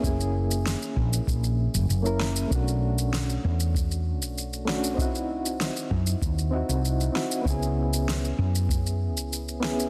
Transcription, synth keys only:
0.00 A#3 C#4
0.05 E4 G#4
2.02 A#3 C#4 E4
2.06 A#4
2.47 A3 C#4
2.52 D4 F#4
4.65 A3 C#4 D4 F#4
4.94 C4 D#4
4.99 E4 F#4
6.51 C4 D#4 E4
6.55 F#4
7.12 C4 D#4 E4 F#4
7.42 B3 C#4
7.47 E4 G#4
9.60 B3 C#4 E4 G#4

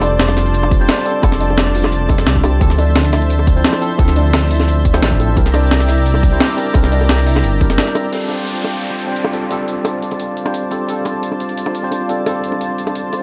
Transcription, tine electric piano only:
Already playing: G3 C4 D4 F4 A4 C5
0.80 G3 C4 D4 F4 C5
1.05 G3 C4 D4 F4 A4
1.22 G3 C4 D4 F4 A4
2.09 G3 C4 D4 F4 A4
2.60 F3 C4 D4 E4 A4
3.55 F3 C4 D4 E4 C5
3.81 F3 C4 D4 E4 A4
3.98 F3 C4 D4 E4 A4
4.93 F3 C4 D4 E4 C5
5.19 F3 C4 D4 E4 A4
5.36 G3 C4 D4 E4 A#4
6.31 G3 C4 D4 E4 C5
6.57 G3 C4 D4 E4 A#4
6.73 G3 C4 D4 E4 A#4
7.60 G3 C4 D4 E4 A#4
8.11 G3 C4 D4 F4 A4
9.07 G3 C4 D4 F4 C5
9.33 G3 C4 D4 F4 A4
9.49 G3 C4 D4 F4 A4
10.45 G3 C4 D4 F4 C5
10.71 G3 C4 D4 F4 A4
10.87 G3 C4 D4 F4 A4
11.83 G3 C4 D4 F4 C5
12.09 G3 C4 D4 F4 A4
12.25 G3 C4 D4 F4 A4

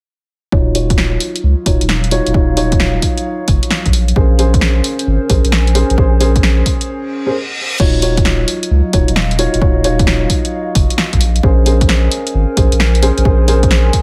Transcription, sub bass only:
0.52 D#1
1.43 C#2
1.66 D#1
1.81 D#1
2.27 D#1
2.34 D#1
3.48 F#1
3.86 A#1
4.16 A#1
5.07 G#1
5.30 A#1
5.45 A#1
5.90 A#1
5.98 A#1
7.80 D#1
8.71 C#2
8.93 D#1
9.08 D#1
9.54 D#1
9.62 D#1
10.75 F#1
11.13 A#1
11.43 A#1
12.34 G#1
12.57 A#1
12.72 A#1
13.18 A#1
13.25 A#1

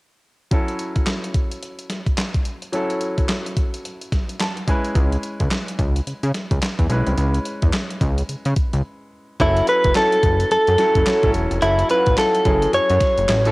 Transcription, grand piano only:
0.51 F#3 C#4 E4 A4
2.72 F#3 C#4 E4 A4
4.41 A5
4.67 G#3 C#4 E4 B4 G#5
6.89 G#3 C#4 E4 B4
9.40 F#3 C#4 E4 A4
9.95 F#3 C#4 E4 A4
10.78 F#3 C#4 E4 A4
11.06 F#3 C#4 E4 A4
11.23 F#3 C#4 E4 A4
11.62 F#3 C#4 E4 A4
11.89 F#3 C#4 E4 F4
11.97 F#4
12.45 F#3 C#4 E4 G#4
13.46 F#3 C#4 E4 A4

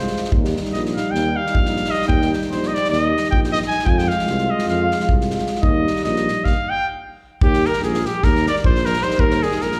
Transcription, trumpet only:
Already playing: C5
0.72 D#5
0.95 F5
1.11 G5
1.36 F5
1.91 D#5
2.08 G5
2.51 C5
2.68 D#5
2.74 D5
2.91 D#5
3.31 G5
3.52 D#5
3.68 G#5
3.86 G5 G#5
3.98 G5
4.08 F5
4.51 D#5
4.69 F5
5.62 D#5
6.04 D#5
6.45 F5
6.70 G5
7.43 G4
7.67 A#4
7.84 G#4
8.06 G4
8.24 A#4
8.48 D5
8.66 C5
8.86 A#4
9.03 C5
9.20 A#4
9.43 G#4
9.62 A#4

